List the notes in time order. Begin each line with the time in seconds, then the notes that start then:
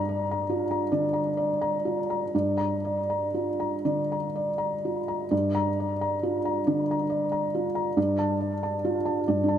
Already playing: G2 D5 A#5
0.09 D5
0.31 A#5
0.49 F4
0.71 A#5
0.92 D3 D5
1.13 A#5
1.37 D5
1.61 A#5
1.85 F4
2.10 A#5
2.34 G2 D5
2.58 A#5
2.85 D5
3.10 A#5
3.34 F4
3.60 A#5
3.85 D3 D5
4.12 A#5
4.36 D5
4.58 A#5
4.85 F4
5.08 A#5
5.31 G2 D5
5.55 A#5
5.80 D5
6.01 A#5
6.23 F4
6.45 A#5
6.67 D3 D5
6.91 A#5
7.10 D5
7.32 A#5
7.55 F4
7.75 A#5
7.97 G2 D5
8.19 A5
8.41 D5
8.63 A5
8.85 F4
9.05 A5
9.28 G2 D5
9.44 D4
9.48 A5